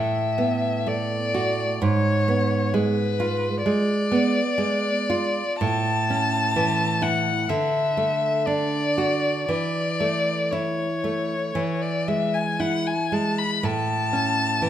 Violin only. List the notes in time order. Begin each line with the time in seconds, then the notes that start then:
Already playing: E5
0.88 D5
1.82 C#5
2.74 B4
3.65 D5
5.61 A5
7.02 F#5
7.49 E5
8.46 D5
9.49 D5
10.51 C#5
11.82 D5
12.08 E5
12.34 G#5
12.60 F#5
12.87 G#5
13.13 A5
13.39 B5
13.65 A5